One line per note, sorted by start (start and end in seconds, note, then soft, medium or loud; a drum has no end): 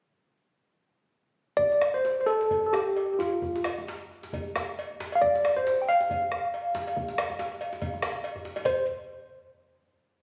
1.57 1.95 D5 medium
1.57 bombo low medium
1.57 djembe bass medium
1.72 djembe slap soft
1.81 bombo rim loud
1.81 cowbell soft
1.94 2.19 C5 medium
1.94 djembe slap soft
1.94 djembe tone soft
2.05 djembe slap medium
2.18 2.27 C5 medium
2.18 djembe slap soft
2.26 2.64 A4 medium
2.26 cowbell soft
2.26 djembe slap soft
2.41 djembe slap soft
2.51 bombo low medium
2.51 cowbell soft
2.51 djembe bass medium
2.63 2.73 A4 medium
2.63 djembe tone soft
2.73 3.12 G4 medium
2.73 bombo rim medium
2.73 djembe slap medium
2.87 bombo rim soft
2.97 cowbell soft
2.97 djembe slap soft
3.10 3.20 G4 soft
3.10 djembe slap soft
3.19 3.62 F4 medium
3.19 djembe slap medium
3.19 djembe tone medium
3.32 bombo rim soft
3.42 bombo low medium
3.42 djembe bass medium
3.55 djembe slap medium
3.64 bombo rim medium
3.64 cowbell medium
3.78 djembe slap soft
3.78 djembe tone medium
3.88 djembe slap medium
4.01 djembe slap soft
4.11 djembe slap soft
4.23 djembe slap medium
4.33 bombo low medium
4.33 cowbell soft
4.33 djembe bass medium
4.56 bombo rim medium
4.56 djembe slap medium
4.68 bombo rim soft
4.78 cowbell soft
4.78 djembe slap soft
4.91 djembe slap soft
5.00 djembe slap medium
5.12 5.22 F5 medium
5.12 bombo rim soft
5.12 cowbell soft
5.22 5.58 D5 medium
5.22 bombo low medium
5.22 djembe bass medium
5.35 djembe slap medium
5.45 bombo rim medium
5.45 cowbell medium
5.57 5.83 C5 medium
5.57 djembe slap soft
5.57 djembe tone medium
5.67 djembe slap medium
5.79 5.88 G5 medium
5.79 djembe slap soft
5.89 8.20 F5 medium
5.89 cowbell soft
5.89 djembe slap soft
6.01 djembe slap medium
6.10 bombo low medium
6.10 cowbell soft
6.10 djembe bass medium
6.22 djembe tone medium
6.32 bombo rim medium
6.44 bombo rim soft
6.53 cowbell soft
6.53 djembe slap soft
6.66 djembe slap soft
6.75 djembe slap medium
6.75 djembe tone medium
6.87 bombo rim soft
6.87 cowbell soft
6.97 bombo low loud
6.97 djembe bass medium
7.08 djembe slap medium
7.18 bombo rim loud
7.18 cowbell medium
7.30 djembe tone medium
7.39 djembe slap medium
7.52 bombo rim soft
7.61 bombo rim soft
7.61 cowbell soft
7.73 djembe slap medium
7.82 bombo low medium
7.82 cowbell soft
7.82 djembe slap soft
7.82 djembe bass medium
7.94 djembe tone medium
8.02 bombo rim medium
8.02 djembe slap medium
8.15 djembe slap soft
8.24 cowbell soft
8.24 djembe slap soft
8.36 bombo rim soft
8.36 djembe bass soft
8.45 djembe slap soft
8.56 bombo rim soft
8.56 cowbell soft
8.56 djembe slap medium
8.65 8.85 C5 medium
8.65 bombo low medium
8.65 cowbell medium
8.65 djembe bass medium